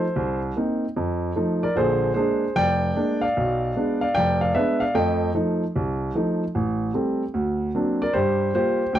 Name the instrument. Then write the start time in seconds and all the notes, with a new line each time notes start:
grand piano
Already playing: A4 C5
0.16 C2
0.57 A#3 C4 D#4
0.97 F2
1.36 F3 A3 D#4
1.63 A#4 D5
1.76 A#1 D3 G#4 C5
2.14 G#3 A#3 D4 G#4 C5
2.56 F1 D5 G5
2.95 G#3 A#3 D4
3.21 D5 F5
3.37 B1
3.76 G#3 B3 D4
4.01 D5 F5
4.15 F1 D5 G5
4.41 D5 F5
4.55 G#3 B3 D4 B4 E5
4.80 D5 F5
4.95 F2 A3 D#5 G5
5.35 F3 A3 D#4
5.76 C2
6.15 F3 A3 D#4
6.55 A1
6.94 G3 A3 C4
7.34 D2
7.75 F#3 A#3 C4 D4
8.02 A#4 D5
8.13 G2 G4 C5
8.54 G3 A#3 F4 G4 C5
8.93 D2 G5